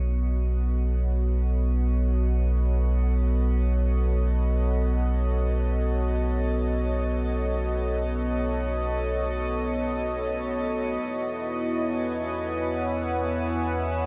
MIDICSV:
0, 0, Header, 1, 3, 480
1, 0, Start_track
1, 0, Tempo, 500000
1, 13500, End_track
2, 0, Start_track
2, 0, Title_t, "Analog synth pad"
2, 0, Program_c, 0, 89
2, 0, Note_on_c, 0, 59, 74
2, 0, Note_on_c, 0, 66, 89
2, 0, Note_on_c, 0, 69, 63
2, 0, Note_on_c, 0, 73, 71
2, 0, Note_on_c, 0, 75, 74
2, 10587, Note_on_c, 0, 64, 87
2, 10592, Note_off_c, 0, 69, 0
2, 10593, Note_off_c, 0, 73, 0
2, 11209, Note_on_c, 0, 71, 63
2, 11264, Note_on_c, 0, 73, 67
2, 11264, Note_on_c, 0, 80, 68
2, 12059, Note_on_c, 0, 78, 82
2, 12085, Note_off_c, 0, 75, 0
2, 12192, Note_off_c, 0, 66, 0
2, 13102, Note_off_c, 0, 59, 0
2, 13500, Note_off_c, 0, 64, 0
2, 13500, Note_off_c, 0, 71, 0
2, 13500, Note_off_c, 0, 73, 0
2, 13500, Note_off_c, 0, 78, 0
2, 13500, Note_off_c, 0, 80, 0
2, 13500, End_track
3, 0, Start_track
3, 0, Title_t, "Sub bass"
3, 0, Program_c, 1, 38
3, 0, Note_on_c, 1, 35, 72
3, 10546, Note_off_c, 1, 35, 0
3, 10592, Note_on_c, 1, 40, 81
3, 13500, Note_off_c, 1, 40, 0
3, 13500, End_track
0, 0, End_of_file